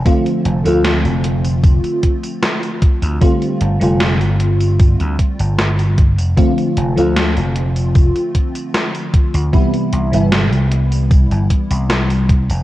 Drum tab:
HH |xxxxxxxxxxxxxxxx|xxxxxxxxxxxxxxxx|xxxxxxxxxxxxxxxx|xxxxxxxxxxxxxxxx|
TB |xx-xxx-xxx-xxx-x|xx-xxx-xxx-xxx-x|xx-xxx-xxx-xxx-x|xx-xxx-xxx-xxx-x|
SD |----o-------o---|----o-------o---|----o-------o---|----o-------o---|
BD |o-------o-o---o-|o-------o-o---o-|o-------o-o---o-|o-------o-o---o-|